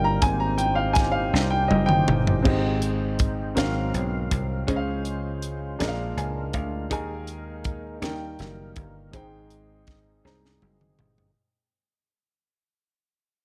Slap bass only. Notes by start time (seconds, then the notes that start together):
Already playing: G1
0.22 G#1
1.33 C2
1.71 F#1
2.08 G1
2.46 G#1
3.57 G#1
3.94 B1
4.31 C2
4.68 C#2
5.80 A#1
6.17 C#2
6.54 D2
6.91 D#2
8.02 D#2
8.39 F#1
8.77 G1
9.13 G#1
10.25 C2
10.62 F#1
10.99 G1